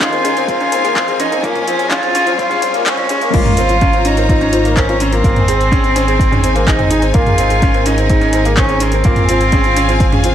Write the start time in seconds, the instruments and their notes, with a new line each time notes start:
Already playing: string section D#4 G#4 A#4 G#5, riser
0.00 upright piano C#4, cello F4, kick, clap, closed hi-hat
0.12 upright piano C4, synth arpeggio sound A#4, closed hi-hat
0.24 upright piano C#4, synth arpeggio sound G#4, closed hi-hat
0.37 upright piano C4, closed hi-hat
0.47 upright piano C4, cello F4, synth arpeggio sound G#4, kick, closed hi-hat
0.60 upright piano C#4, closed hi-hat
0.72 upright piano C4, synth arpeggio sound A#4, closed hi-hat
0.84 upright piano A#3, synth arpeggio sound G#4, closed hi-hat
0.96 upright piano C4, kick, clap, closed hi-hat
1.08 upright piano C4, synth arpeggio sound G#4, closed hi-hat
1.19 upright piano C#4, cello D#4, closed hi-hat
1.32 upright piano C4, synth arpeggio sound A#4, closed hi-hat
1.43 analog synth bass G#1, upright piano A#3, cello C#4, string section F4 C#5, synth arpeggio sound F4, kick, closed hi-hat
1.56 closed hi-hat, mid tom
1.68 upright piano C4, synth arpeggio sound F4, closed hi-hat
1.79 closed hi-hat
1.91 upright piano C#4, cello F4, synth arpeggio sound G#4, kick, clap, closed hi-hat
2.03 upright piano C4, synth arpeggio sound F4, closed hi-hat
2.15 upright piano C#4, closed hi-hat
2.26 upright piano C4, synth arpeggio sound F4, closed hi-hat
2.38 upright piano C4, cello F4, kick, closed hi-hat
2.49 upright piano C#4, synth arpeggio sound G#4, closed hi-hat, mid tom
2.62 upright piano C4, synth arpeggio sound F4, closed hi-hat
2.74 upright piano A#3, closed hi-hat
2.86 upright piano C4, cello C#4, synth arpeggio sound F4, kick, clap, closed hi-hat
2.97 upright piano C4, closed hi-hat, mid tom
3.09 upright piano C#4, synth arpeggio sound G#4, closed hi-hat
3.21 upright piano A#3, synth arpeggio sound C#5, closed hi-hat
3.33 analog synth bass G#1, upright piano A#3, string section F4 C5 C#5 A#5, synth arpeggio sound F4, cello F4, kick, closed hi-hat, crash
3.46 closed hi-hat, mid tom
3.57 upright piano C4, synth arpeggio sound A#4, closed hi-hat
3.69 synth arpeggio sound F4, closed hi-hat
3.81 upright piano C#4, kick, closed hi-hat
3.93 upright piano C4, synth arpeggio sound F4, closed hi-hat
4.05 upright piano C#4, cello D#4, closed hi-hat
4.17 upright piano C4, synth arpeggio sound A#4, closed hi-hat
4.29 upright piano C4, synth arpeggio sound F4, kick, closed hi-hat
4.41 upright piano C#4, closed hi-hat
4.53 upright piano C4, synth arpeggio sound F4, closed hi-hat
4.65 upright piano A#3, closed hi-hat
4.77 upright piano C4, cello C#4, synth arpeggio sound A#4, kick, clap, closed hi-hat
4.89 upright piano C4, synth arpeggio sound F4, closed hi-hat
5.00 cello C4, upright piano C#4, closed hi-hat
5.12 upright piano A#3, synth arpeggio sound F4, closed hi-hat
5.24 analog synth bass G#1, upright piano A#3, string section D#4 G#4 G#5, kick, closed hi-hat
5.36 synth arpeggio sound C5, closed hi-hat, mid tom
5.48 upright piano C4, synth arpeggio sound G#4, closed hi-hat
5.61 closed hi-hat
5.72 upright piano C#4, synth arpeggio sound G#4, kick, closed hi-hat
5.84 upright piano C4, closed hi-hat
5.96 upright piano C#4, synth arpeggio sound C5, closed hi-hat
6.08 upright piano C4, synth arpeggio sound G#4, closed hi-hat
6.19 upright piano C4, kick, closed hi-hat
6.32 upright piano C#4, synth arpeggio sound G#4, closed hi-hat, mid tom
6.43 upright piano C4, closed hi-hat
6.55 upright piano A#3, synth arpeggio sound C5, closed hi-hat
6.66 upright piano C4, cello D#4, synth arpeggio sound G#4, kick, clap, closed hi-hat
6.79 upright piano C4, closed hi-hat, mid tom
6.90 upright piano D#4, synth arpeggio sound G#4, closed hi-hat
7.02 upright piano C4, closed hi-hat
7.14 analog synth bass G#1, upright piano A#3, cello F4, string section G#4 A#4, synth arpeggio sound A#4, kick, closed hi-hat
7.26 synth arpeggio sound G#4, closed hi-hat, mid tom
7.38 upright piano C4, closed hi-hat
7.50 synth arpeggio sound G#4, closed hi-hat
7.62 upright piano C#4, kick, closed hi-hat
7.74 upright piano C4, synth arpeggio sound A#4, closed hi-hat
7.86 upright piano C#4, cello D#4, synth arpeggio sound G#4, closed hi-hat
7.98 upright piano C4, closed hi-hat
8.10 upright piano C4, synth arpeggio sound G#4, kick, closed hi-hat
8.21 upright piano C#4, closed hi-hat
8.33 upright piano C4, synth arpeggio sound A#4, closed hi-hat
8.45 upright piano A#3, synth arpeggio sound G#4, closed hi-hat
8.57 upright piano C4, cello C#4, kick, clap, closed hi-hat
8.69 upright piano C4, synth arpeggio sound G#4, closed hi-hat
8.80 cello C4, upright piano C#4, closed hi-hat
8.92 upright piano C4, synth arpeggio sound A#4, closed hi-hat
9.04 analog synth bass G#1, upright piano A#3, string section F4 G#4 F5 G#5, synth arpeggio sound F4, kick, closed hi-hat
9.16 closed hi-hat, mid tom
9.29 upright piano C4, synth arpeggio sound F4, closed hi-hat
9.41 closed hi-hat
9.52 upright piano C#4, synth arpeggio sound G#4, kick, closed hi-hat
9.64 upright piano C4, synth arpeggio sound F4, closed hi-hat
9.76 upright piano C#4, closed hi-hat
9.88 upright piano C4, synth arpeggio sound F4, closed hi-hat
10.00 upright piano C4, kick, closed hi-hat
10.12 upright piano C#4, synth arpeggio sound G#4, closed hi-hat, mid tom
10.24 upright piano C4, synth arpeggio sound F4, closed hi-hat